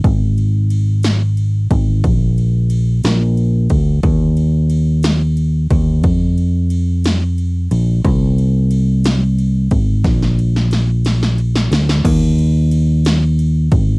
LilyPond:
<<
  \new Staff \with { instrumentName = "Fingered electric bass" } { \clef bass \time 6/8 \key aes \lydian \tempo 4. = 60 aes,,2~ aes,,8 aes,,8 | bes,,4. bes,,4 d,8 | ees,2~ ees,8 ees,8 | f,2~ f,8 bes,,8 |
c,2~ c,8 aes,,8 | bes,,2~ bes,,8 d,8 | ees,2~ ees,8 aes,,8 | }
  \new DrumStaff \with { instrumentName = "Drums" } \drummode { \time 6/8 <bd cymr>8 cymr8 cymr8 <cymr sn>8 cymr8 <bd cymr>8 | <bd cymr>8 cymr8 cymr8 <cymr sn>8 cymr8 <bd cymr>8 | <bd cymr>8 cymr8 cymr8 <cymr sn>8 cymr8 <bd cymr>8 | <bd cymr>8 cymr8 cymr8 <cymr sn>8 cymr8 cymr8 |
<bd cymr>8 cymr8 cymr8 <cymr sn>8 cymr8 <bd cymr>8 | <bd cymr sn>16 sn16 cymr16 sn16 <cymr sn>8 <cymr sn>16 sn16 cymr16 sn16 <cymr sn>16 sn16 | <cymc bd cymr>8 cymr8 cymr8 <cymr sn>8 cymr8 <bd cymr>8 | }
>>